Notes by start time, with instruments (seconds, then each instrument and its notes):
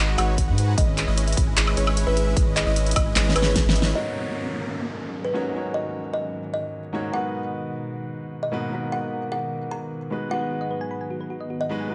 0.00 sub bass G#1, analog polysynth G#3 D#4 F#4 B4 D#5
0.08 synth arpeggio sound B4
0.18 sub bass G#1, analog polysynth G#3 D#4 F#4 B4 C#5, synth arpeggio sound F#4, kalimba F#5, closed hi-hat, high woodblock
0.28 synth arpeggio sound D#5
0.38 synth arpeggio sound F#4, kick, closed hi-hat
0.48 sub bass G#2, analog polysynth G#3 D#4 F#4 B4 F#5, synth arpeggio sound F#5
0.58 synth arpeggio sound F#4, closed hi-hat
0.68 synth arpeggio sound G#5
0.78 sub bass G#1, analog polysynth G#3 C#4 E4 B4 D#5, synth arpeggio sound G#4, kalimba D#5, kick, closed hi-hat
0.88 synth arpeggio sound C#5
0.97 synth arpeggio sound G#4, clap, closed hi-hat
1.07 sub bass G#1, analog polysynth G#3 C#4 E4 B4 D#5, synth arpeggio sound D#5
1.17 synth arpeggio sound C#5, closed hi-hat
1.28 synth arpeggio sound E5, closed hi-hat
1.32 closed hi-hat
1.37 sub bass G#1, analog polysynth G#3 C#4 E4 B4 D#5, synth arpeggio sound B5, kick, closed hi-hat
1.47 synth arpeggio sound G#5
1.57 sub bass G#1, analog polysynth G#3 C#4 E4 B4 D#5, synth arpeggio sound G#4, clap, closed hi-hat
1.67 synth arpeggio sound C#5, high woodblock
1.77 sub bass G#1, analog polysynth G#3 C#4 E4 B4 C#5, synth arpeggio sound G#4, closed hi-hat
1.87 synth arpeggio sound D#5, high woodblock
1.97 synth arpeggio sound G#4, closed hi-hat
2.07 sub bass G#1, analog polysynth G#3 C#4 E4 B4 E5, kalimba B4, synth arpeggio sound E5
2.17 synth arpeggio sound G#4, closed hi-hat
2.27 synth arpeggio sound G#5
2.36 sub bass G#1, analog polysynth G#3 C#4 E4 B4 D#5, synth arpeggio sound G#4, kick, closed hi-hat
2.47 synth arpeggio sound C#5
2.56 synth arpeggio sound G#4, kalimba D#5, clap, closed hi-hat
2.66 sub bass G#1, analog polysynth G#3 C#4 E4 B4 D#5, synth arpeggio sound D#5
2.76 synth arpeggio sound C#5, closed hi-hat
2.86 synth arpeggio sound E5, closed hi-hat
2.91 closed hi-hat
2.96 sub bass G#1, analog polysynth G#3 C#4 E4 B4 D#5, kalimba D#5, synth arpeggio sound B5, kick, closed hi-hat, high woodblock
3.06 synth arpeggio sound G#5
3.16 sub bass G#1, analog polysynth G#3 C#4 E4 B4 D#5, synth arpeggio sound G#4, snare, clap, closed hi-hat
3.26 synth arpeggio sound C#5, snare
3.36 sub bass G#1, analog polysynth G#3 C#4 E4 B4 C#5, kalimba B4, synth arpeggio sound G#5, closed hi-hat, high woodblock
3.42 synth arpeggio sound G#4, snare
3.56 synth arpeggio sound G#4, kick, snare, closed hi-hat
3.66 sub bass G#1, analog polysynth G#3 C#4 E4 B4 E5, synth arpeggio sound G#4, snare
3.75 synth arpeggio sound D#5, closed hi-hat
3.82 synth arpeggio sound C#5, snare
3.93 grand piano G#2 A#3 C#4 D#4 F#4 C#5, analog synth pad G#2 D#3 F#3 C#4, kalimba D#5, downlifter
5.25 kalimba B4
5.33 grand piano G#2 A#3 C#4 D#4 F#4 C#5
5.52 grand piano G#2 A#3 C#4 D#4 F#4
5.57 grand piano C#5
5.74 kalimba D#5
6.14 kalimba D#5
6.54 kalimba D#5
6.93 grand piano G#2 A#3 C#4 D#4 F#4 C#5
7.12 grand piano G#2 B3 D#4 F#4 A#4, analog synth pad B2, kalimba F#5
7.16 grand piano B4
8.43 kalimba D#5
8.52 grand piano G#2 A#3 B3 D#4 F#4 B4
8.70 grand piano G#2 B3 D#4 F#4 A#4
8.74 grand piano B4
8.92 kalimba F#5
9.32 kalimba F#5
9.71 kalimba A#5
10.10 analog synth pad G#2 F#3 B3, grand piano G#3 B3 D#4 F#4 B4
10.29 grand piano G#3 B3 D#4 F#4, synth arpeggio sound F#4, kalimba F#5
10.33 grand piano B4
10.41 synth arpeggio sound B4
10.51 synth arpeggio sound F#4
10.61 synth arpeggio sound D#5
10.71 synth arpeggio sound B4
10.81 synth arpeggio sound G#5
10.91 synth arpeggio sound B5
11.01 synth arpeggio sound G#5
11.11 synth arpeggio sound F#4
11.21 synth arpeggio sound B4
11.30 synth arpeggio sound F#4
11.41 synth arpeggio sound D#5
11.50 synth arpeggio sound F#4
11.61 kalimba D#5, synth arpeggio sound F#5
11.69 grand piano G#3 B3 D#4 F#4 B4, synth arpeggio sound F#4
11.80 synth arpeggio sound G#5
11.88 grand piano G#3 B3 D#4 F#4, synth arpeggio sound F#4